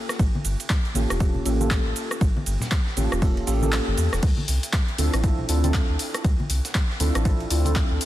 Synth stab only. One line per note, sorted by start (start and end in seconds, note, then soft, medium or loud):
0.00 0.92 A#3 medium
0.00 0.93 C#4 medium
0.00 0.93 F4 medium
0.00 0.93 G4 medium
0.00 0.93 A4 loud
0.95 1.17 A#3 medium
0.95 1.17 C#4 medium
0.95 1.17 F4 medium
0.95 1.17 G4 medium
0.95 1.17 A4 medium
1.20 1.43 A#3 medium
1.20 1.43 C#4 medium
1.20 1.43 F4 medium
1.20 1.43 G4 medium
1.20 1.43 A4 medium
1.45 1.58 A#3 medium
1.45 1.58 C#4 medium
1.45 1.58 F4 medium
1.45 1.58 G4 medium
1.45 1.59 A4 medium
1.60 2.94 A#3 medium
1.60 2.94 C#4 medium
1.60 2.94 F4 medium
1.60 2.95 G4 medium
1.60 2.95 A4 medium
2.96 3.19 A#3 medium
2.96 3.19 C#4 medium
2.96 3.19 F4 medium
2.96 3.19 G4 medium
2.96 3.19 A4 medium
3.22 3.45 A#3 medium
3.22 3.45 C#4 medium
3.22 3.45 F4 medium
3.22 3.45 G4 medium
3.22 3.45 A4 medium
3.47 3.60 A#3 medium
3.47 3.60 C#4 medium
3.47 3.60 F4 medium
3.47 3.60 G4 medium
3.47 3.60 A4 loud
3.62 4.21 A#3 medium
3.62 4.21 C#4 medium
3.62 4.22 F4 medium
3.62 4.22 G4 medium
3.62 4.22 A4 medium
4.98 5.21 C4 medium
4.98 5.21 D4 medium
4.98 5.21 E4 medium
4.98 5.21 F4 medium
4.98 5.21 A4 medium
5.23 5.46 C4 medium
5.23 5.46 D4 medium
5.23 5.46 E4 medium
5.23 5.46 F4 medium
5.23 5.47 A4 medium
5.49 5.62 C4 medium
5.49 5.62 D4 medium
5.49 5.62 E4 medium
5.49 5.62 F4 medium
5.49 5.62 A4 medium
5.64 6.98 C4 medium
5.64 6.98 D4 medium
5.64 6.98 E4 medium
5.64 6.98 F4 medium
5.64 6.98 A4 loud
7.00 7.22 C4 medium
7.00 7.22 D4 medium
7.00 7.22 E4 medium
7.00 7.22 F4 medium
7.00 7.22 A4 medium
7.25 7.48 C4 medium
7.25 7.48 D4 medium
7.25 7.48 E4 medium
7.25 7.48 F4 medium
7.25 7.48 A4 medium
7.50 7.63 C4 medium
7.50 7.63 D4 medium
7.50 7.63 E4 medium
7.50 7.64 F4 medium
7.50 7.64 A4 medium
7.65 8.05 C4 medium
7.65 8.05 D4 medium
7.65 8.05 E4 medium
7.65 8.05 F4 medium
7.65 8.05 A4 medium